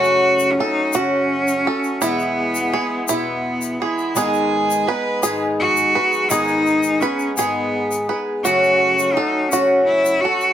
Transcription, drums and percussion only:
0.04 shaker
0.39 shaker
0.93 shaker
1.47 shaker
1.84 shaker
2.02 shaker
2.20 shaker
2.55 shaker
3.08 shaker
3.62 shaker
3.98 shaker
4.16 shaker
4.34 shaker
4.70 shaker
5.23 shaker
5.76 shaker
6.13 shaker
6.30 shaker
6.48 shaker
6.66 shaker
6.83 shaker
7.01 shaker
7.19 shaker
7.37 shaker
7.92 shaker
8.45 shaker
8.64 shaker
8.99 shaker
9.52 shaker
10.05 shaker
10.41 shaker

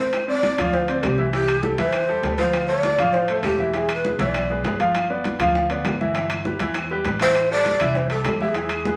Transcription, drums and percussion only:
0.13 high bongo, high conga, high timbale, claves
0.28 high conga
0.43 high bongo, high conga, high timbale
0.58 high conga, low conga, high timbale, claves
0.73 high bongo, high conga
0.88 high conga, high timbale
1.03 high bongo, low bongo, high conga, high timbale, low timbale, claves
1.18 high conga
1.33 high bongo, high conga, high timbale
1.48 high bongo, high conga, high timbale, claves
1.63 high bongo, high conga
1.78 high conga, high timbale
1.93 high bongo, high conga, high timbale, claves
2.08 high bongo, high conga
2.23 high bongo, low bongo, high conga, high timbale, low timbale
2.38 high bongo, high conga, high timbale
2.53 high bongo, high conga, high timbale, claves
2.68 high conga
2.83 high bongo, high conga, high timbale
2.99 high conga, low conga, high timbale, claves
3.14 high bongo, high conga
3.28 high conga, high timbale
3.43 high bongo, low bongo, high conga, high timbale, low timbale, claves
3.59 high conga
3.74 high bongo, high conga, high timbale
3.89 high bongo, high conga, high timbale, claves
4.05 high bongo, high conga
4.19 high conga, high timbale
4.34 high bongo, high conga, high timbale, claves
4.50 high bongo, high conga
4.64 high bongo, low bongo, high conga, high timbale, low timbale
4.80 high bongo, high conga, high timbale
4.95 high bongo, high conga, high timbale, claves
5.10 high conga
5.24 high bongo, high conga, high timbale
5.40 high conga, low conga, high timbale, claves
5.55 high bongo, high conga
5.70 high conga, high timbale
5.85 high bongo, low bongo, high conga, high timbale, low timbale, claves
6.01 high conga
6.15 high bongo, high conga, high timbale
6.30 high bongo, high conga, high timbale, claves
6.45 high bongo, high conga
6.59 high conga, high timbale
6.74 high bongo, high conga, high timbale, claves
6.91 high bongo, high conga
7.05 high bongo, low bongo, high conga, high timbale
7.20 high bongo, high conga, high timbale
7.35 high bongo, high conga, high timbale, claves
7.51 high conga
7.65 high bongo, high conga, high timbale
7.80 high conga, low conga, high timbale, claves
7.95 high bongo, high conga, low conga
8.10 high conga, high timbale
8.25 high bongo, low bongo, high conga, high timbale, low timbale, claves
8.40 high conga
8.55 high bongo, high conga, high timbale
8.69 high bongo, high conga, high timbale, claves
8.85 high bongo, high conga

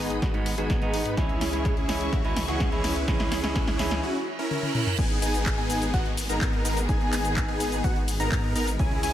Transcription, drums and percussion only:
0.10 closed hi-hat
0.22 kick, snare, closed hi-hat
0.34 closed hi-hat
0.46 open hi-hat
0.58 closed hi-hat
0.70 kick, snare, closed hi-hat
0.82 closed hi-hat
0.94 open hi-hat
1.05 closed hi-hat
1.17 kick, snare, closed hi-hat
1.29 closed hi-hat
1.41 snare, open hi-hat
1.53 closed hi-hat
1.65 kick, snare, closed hi-hat
1.77 closed hi-hat
1.89 snare, open hi-hat
2.01 closed hi-hat
2.13 kick, snare, closed hi-hat
2.25 closed hi-hat
2.37 snare, open hi-hat
2.48 closed hi-hat
2.60 kick, snare, closed hi-hat
2.72 closed hi-hat
2.84 snare, open hi-hat
2.96 closed hi-hat
3.08 kick, snare, closed hi-hat
3.20 snare, closed hi-hat
3.32 snare, open hi-hat
3.44 snare, closed hi-hat
3.56 kick, snare, closed hi-hat
3.67 snare, closed hi-hat
3.79 snare, open hi-hat
3.91 snare, closed hi-hat
4.51 high tom
4.63 high tom
4.75 mid tom
4.87 mid tom
4.98 kick, closed hi-hat, crash, shaker
5.10 closed hi-hat
5.22 open hi-hat, shaker
5.34 closed hi-hat, shaker
5.46 kick, clap, closed hi-hat, shaker
5.58 closed hi-hat
5.70 open hi-hat, shaker
5.82 closed hi-hat, shaker
5.94 kick, closed hi-hat, shaker
6.06 closed hi-hat
6.17 open hi-hat, shaker
6.29 closed hi-hat, shaker
6.41 kick, clap, closed hi-hat, shaker
6.53 closed hi-hat
6.65 open hi-hat, shaker
6.77 closed hi-hat, shaker
6.89 kick, closed hi-hat, shaker
7.01 closed hi-hat
7.13 clap, open hi-hat, shaker
7.25 closed hi-hat, shaker
7.37 kick, clap, closed hi-hat, shaker
7.48 closed hi-hat
7.60 open hi-hat, shaker
7.72 closed hi-hat, shaker
7.84 kick, closed hi-hat, shaker
7.96 closed hi-hat
8.08 open hi-hat, shaker
8.20 closed hi-hat, shaker
8.32 kick, clap, closed hi-hat, shaker
8.44 closed hi-hat
8.56 open hi-hat, shaker
8.67 closed hi-hat, shaker
8.79 kick, closed hi-hat, shaker
8.91 closed hi-hat
9.03 open hi-hat, shaker

